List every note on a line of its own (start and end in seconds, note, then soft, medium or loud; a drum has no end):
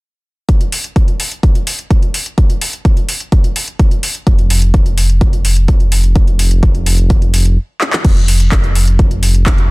0.49 kick loud
0.49 closed hi-hat medium
0.61 closed hi-hat soft
0.72 open hi-hat loud
0.84 closed hi-hat soft
0.96 kick loud
0.96 closed hi-hat medium
1.08 closed hi-hat soft
1.20 open hi-hat loud
1.32 closed hi-hat soft
1.43 kick loud
1.43 closed hi-hat medium
1.55 closed hi-hat soft
1.67 open hi-hat loud
1.79 closed hi-hat soft
1.91 kick loud
1.91 closed hi-hat medium
2.02 closed hi-hat soft
2.14 open hi-hat loud
2.26 closed hi-hat soft
2.38 kick loud
2.38 closed hi-hat medium
2.50 closed hi-hat soft
2.61 open hi-hat loud
2.73 closed hi-hat soft
2.85 kick loud
2.85 closed hi-hat medium
2.97 closed hi-hat soft
3.09 open hi-hat loud
3.20 closed hi-hat soft
3.32 kick loud
3.32 closed hi-hat medium
3.44 closed hi-hat soft
3.56 open hi-hat loud
3.68 closed hi-hat soft
3.79 kick loud
3.79 closed hi-hat medium
3.91 closed hi-hat soft
4.03 open hi-hat loud
4.15 closed hi-hat soft
4.27 7.57 F1 medium
4.27 kick loud
4.27 closed hi-hat medium
4.38 closed hi-hat soft
4.50 open hi-hat loud
4.62 closed hi-hat soft
4.74 kick loud
4.74 closed hi-hat medium
4.86 closed hi-hat soft
4.98 open hi-hat loud
5.09 closed hi-hat soft
5.21 kick loud
5.21 closed hi-hat medium
5.33 closed hi-hat soft
5.45 open hi-hat loud
5.57 closed hi-hat soft
5.68 kick loud
5.68 closed hi-hat medium
5.80 closed hi-hat soft
5.92 open hi-hat loud
6.04 closed hi-hat soft
6.16 kick loud
6.16 closed hi-hat medium
6.27 closed hi-hat soft
6.39 open hi-hat loud
6.51 closed hi-hat soft
6.63 kick loud
6.63 closed hi-hat medium
6.75 closed hi-hat soft
6.86 open hi-hat loud
6.98 closed hi-hat soft
7.10 kick loud
7.10 closed hi-hat medium
7.22 closed hi-hat soft
7.34 open hi-hat loud
7.46 closed hi-hat soft
7.81 clap medium
7.93 clap medium
8.05 9.71 F1 medium
8.05 kick loud
8.05 closed hi-hat medium
8.05 crash medium
8.16 closed hi-hat soft
8.28 open hi-hat loud
8.40 closed hi-hat soft
8.52 kick loud
8.52 clap loud
8.52 closed hi-hat medium
8.64 closed hi-hat soft
8.75 open hi-hat loud
8.87 closed hi-hat soft
8.99 kick loud
8.99 closed hi-hat medium
9.11 closed hi-hat soft
9.23 open hi-hat loud
9.35 closed hi-hat soft
9.46 kick loud
9.46 clap loud
9.46 closed hi-hat medium
9.58 closed hi-hat soft